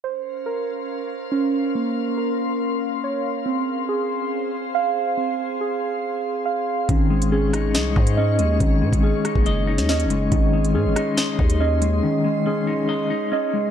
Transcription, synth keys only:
\new Staff \with { instrumentName = "Synth keys" } { \time 4/4 \key bes \minor \tempo 4 = 140 c''4 bes'2 des'4 | bes4 bes'2 des''4 | c'4 aes'2 f''4 | c'4 aes'2 f''4 |
des'4 aes'2 ees''4 | des'4 aes'2 ees''4 | des'4 aes'2 ees''4 | des'4 aes'2 ees''4 | }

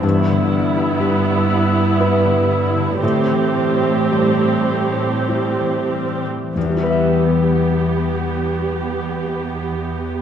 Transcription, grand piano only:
\new Staff \with { instrumentName = "Grand piano" } { \time 3/4 \key e \minor \tempo 4 = 52 g,4 g4 <e' b'>4 | a,4 g4 <e' c''>4 | <e, e g e' b' e''>2. | }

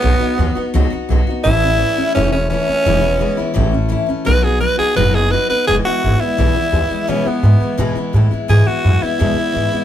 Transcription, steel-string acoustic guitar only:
\new Staff \with { instrumentName = "Steel-string acoustic guitar" } { \time 4/4 \key e \major \tempo 4 = 170 <b, fis b dis' fis'>8 <b dis' fis'>8 <fis b dis' fis'>8 <b dis' fis'>8 <b, fis b dis' fis'>8 <b dis' fis'>8 <fis b dis' fis'>8 <b dis' fis'>8 | <a, e a cis' e'>8 <a cis' e'>8 <e a cis' e'>8 <a cis' e'>8 <a, e a cis' e'>8 <a cis' e'>8 <e a cis' e'>8 <a cis' e'>8 | <e, b, e gis b e'>8 <e gis b e'>8 <e gis b e'>8 <e gis b e'>8 <a, e a cis' e'>8 <a cis' e'>8 <e a cis' e'>8 <a cis' e'>8 | <b, fis b dis' fis'>8 <b dis' fis'>8 <fis b dis' fis'>8 <b dis' fis'>8 <b, fis b dis' fis'>8 <b dis' fis'>8 <fis b dis' fis'>8 <b dis' fis'>8 |
<e, b, e gis b e'>8 <e gis b e'>8 <e gis b e'>8 <e gis b e'>8 <e, b, e gis b e'>8 <e gis b e'>8 <e gis b e'>8 <e gis b e'>8 | <e, b, e gis b e'>8 <e gis b e'>8 <e gis b e'>8 <e gis b e'>8 <e, b, e gis b e'>8 <e gis b e'>8 <e gis b e'>8 <e gis b e'>8 | <e, b, e gis b e'>8 <e gis b e'>8 <e gis b e'>8 <e gis b e'>8 <e, b, e gis b e'>8 <e gis b e'>8 <e gis b e'>8 <e gis b e'>8 | }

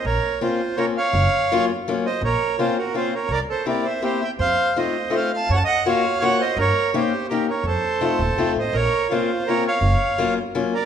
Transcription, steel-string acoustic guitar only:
\new Staff \with { instrumentName = "Steel-string acoustic guitar" } { \time 3/4 \key bes \minor \tempo 4 = 166 r4 <bes c' des' f'>8 r8 <bes c' des' f'>8 r8 | r4 <ges bes des' f'>8 r8 <ges bes des' f'>8 r8 | r4 <bes c' des' f'>8 r8 <bes c' des' f'>8 r8 | r4 <bes c' e' g'>8 r8 <bes c' e' g'>8 r8 |
r4 <a c' ees' f'>8 r8 <a c' ees' f'>8 r8 | r4 <bes des' f' ges'>8 r8 <bes des' f' ges'>8 r8 | r4 <bes des' ees' g'>8 r8 <bes des' ees' g'>8 r8 | r4 <a c' ees' f'>8 r8 <a c' ees' f'>8 r8 |
r4 <bes c' des' f'>8 r8 <bes c' des' f'>8 r8 | r4 <ges bes des' f'>8 r8 <ges bes des' f'>8 r8 | }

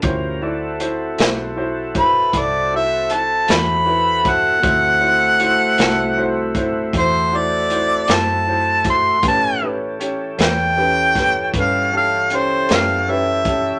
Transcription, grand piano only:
\new Staff \with { instrumentName = "Grand piano" } { \time 12/8 \key d \mixolydian \tempo 4. = 52 <e' fis' c''>8 <e' fis' d''>8 <e' fis' c''>8 <e' fis' c''>8 <e' fis' c''>8 <e' fis' c''>8 <e' fis' a'>8 <e' fis' c''>8 <e' fis' a'>8 <e' fis' c''>8 <e' fis' b'>8 <e' fis' c''>8 | <e' fis' c''>8 <e' fis' c''>8 <e' fis' c''>8 <e' fis' a'>8 <e' fis' c''>8 <e' fis' c''>8 <e' fis' c''>8 <e' fis' c''>8 <e' fis' c''>8 <e' fis' c''>8 <e' fis' c''>8 <e' fis' c''>8 | <cis' g' b'>8 <cis' g' b'>8 <cis' g' cis''>8 <cis' g' b'>8 <cis' g' b'>8 <cis' g' b'>8 <cis' g' b'>8 <cis' g' a'>8 <cis' g' cis''>8 <cis' g' b'>8 <cis' g' b'>8 <cis' g' a'>8 | }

